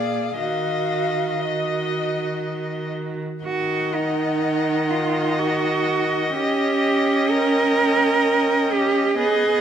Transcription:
Already playing: A#2 G#4 D5 F5
0.39 D#3 F#4 D#5 F5
1.41 F#4 D#5
3.45 D#3 F#4 D#5 F#5
3.94 D#4
4.91 F4
5.39 F#4
6.34 C#4 G4 G5
7.31 A#4
8.72 G4
9.19 B3 G#4 D#5 G#5

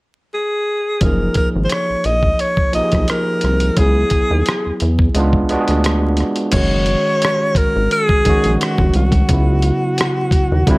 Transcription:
0.34 G#4
1.01 F#1 F3 A#3 D#4 A#4, kick, closed hi-hat
1.05 G#4
1.34 A#4, kick, closed hi-hat
1.56 G#1
1.64 C5
1.70 C#5, cross-stick, closed hi-hat
1.90 A#1
2.04 A#1 D#5, closed hi-hat
2.23 kick
2.39 C#5, closed hi-hat
2.57 kick
2.73 B1 F3 A#3 D#4 D#5, closed hi-hat
2.77 G4
2.83 G#4
2.92 B1, kick, cross-stick, closed hi-hat
3.08 A#4, cross-stick, closed hi-hat
3.41 C2, cross-stick, closed hi-hat
3.60 closed hi-hat
3.76 C#2 F#3 B3 E4 G#4, kick, closed hi-hat
3.81 G#4
4.10 kick, closed hi-hat
4.31 D#2
4.46 cross-stick, closed hi-hat
4.67 E2
4.80 E2, closed hi-hat
4.99 kick
5.14 C#2 G#3 B3 D4, closed hi-hat
5.19 F4
5.33 kick
5.49 D2 G#3 B3 D4, closed hi-hat
5.54 F#4
5.60 G#4
5.68 D2, cross-stick, closed hi-hat
5.84 cross-stick, closed hi-hat
6.17 cross-stick, closed hi-hat
6.36 closed hi-hat
6.52 F#1 D#3 G#3 C#4 C#5, kick, closed hi-hat, crash
6.56 F#4
6.86 closed hi-hat
7.22 cross-stick, closed hi-hat
7.55 G#1 A#4, kick, closed hi-hat
7.76 G#1
7.91 G#4, closed hi-hat
8.09 kick
8.25 A#1 D#3 G#3 C#4, kick, closed hi-hat
8.30 F#4
8.44 A#1, closed hi-hat
8.61 F#4, cross-stick, closed hi-hat
8.78 F1, kick
8.94 C2 F#4, closed hi-hat
9.12 kick, closed hi-hat
9.29 C#2 C#3 F#3 B3, kick, closed hi-hat
9.33 E4
9.62 closed hi-hat
9.98 cross-stick, closed hi-hat
10.31 D#2, kick, closed hi-hat
10.52 D#2
10.67 C2 D3 G3 C4, kick, closed hi-hat
10.71 E4

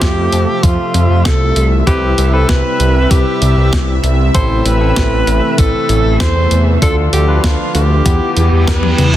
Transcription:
Already playing: C3 F3 A3 F4 G4 C5 E5
0.02 F2, kick, snare, closed hi-hat
0.32 F2, closed hi-hat
0.63 F2 F4, kick, closed hi-hat
0.94 F2, closed hi-hat
1.10 F2
1.25 C2 A4, kick, snare, closed hi-hat
1.56 C2, closed hi-hat
1.87 C2 G3 C4 E4 G4 B4, kick, closed hi-hat
2.18 C2, closed hi-hat
2.33 C4 E4 A4 B4
2.49 C2 B4, kick, snare, closed hi-hat
2.80 C2, closed hi-hat
3.11 C2 G4, kick, closed hi-hat
3.42 C2, closed hi-hat
3.57 C2
3.73 C2, kick, snare, closed hi-hat
4.04 C2, closed hi-hat
4.34 A1 E3 A3 C4 E4 A4 C5, kick, closed hi-hat
4.66 A1 B4, closed hi-hat
4.81 C4 E4 A4
4.96 A1, kick, snare, closed hi-hat
5.27 A1, closed hi-hat
5.58 A1 A4, kick, closed hi-hat
5.89 A1, closed hi-hat
6.05 A1
6.20 E2 C5, kick, snare, closed hi-hat
6.51 E2, closed hi-hat
6.82 D2 D3 F3 D4 F4 A4, kick, closed hi-hat
7.13 D2 G4, closed hi-hat
7.28 D4 F4 B4
7.44 D2 F4, kick, snare, closed hi-hat
7.75 D2 G4, closed hi-hat
8.06 E2 E3 G3 B3 E4 G4, kick, closed hi-hat, reverse cymbal
8.37 E2, closed hi-hat
8.52 E2
8.68 E2 B4, kick, snare, closed hi-hat
8.83 high tom
8.98 E2, closed hi-hat, mid tom

